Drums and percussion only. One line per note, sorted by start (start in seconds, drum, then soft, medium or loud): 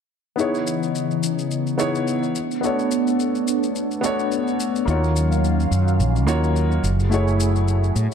0.39 shaker soft
0.55 shaker soft
0.67 shaker medium
0.83 shaker soft
0.95 shaker soft
1.11 shaker soft
1.23 shaker medium
1.39 shaker soft
1.51 shaker soft
1.67 shaker soft
1.79 shaker medium
1.95 shaker soft
2.08 shaker soft
2.23 shaker soft
2.35 shaker medium
2.51 shaker soft
2.63 shaker soft
2.79 shaker soft
2.91 shaker medium
3.07 shaker soft
3.20 shaker soft
3.35 shaker soft
3.48 shaker medium
3.63 shaker soft
3.76 shaker soft
3.91 shaker soft
4.04 shaker medium
4.19 shaker soft
4.32 shaker soft
4.47 shaker soft
4.60 shaker medium
4.76 shaker soft
4.88 shaker soft
5.04 shaker soft
5.16 shaker medium
5.32 shaker soft
5.44 shaker soft
5.60 shaker soft
5.72 shaker medium
5.88 shaker soft
6.00 shaker soft
6.16 shaker soft
6.28 shaker medium
6.44 shaker soft
6.56 shaker soft
6.72 shaker soft
6.84 shaker medium
7.00 shaker soft
7.12 shaker soft
7.28 shaker soft
7.40 shaker medium
7.56 shaker soft
7.68 shaker soft
7.84 shaker soft
7.96 shaker medium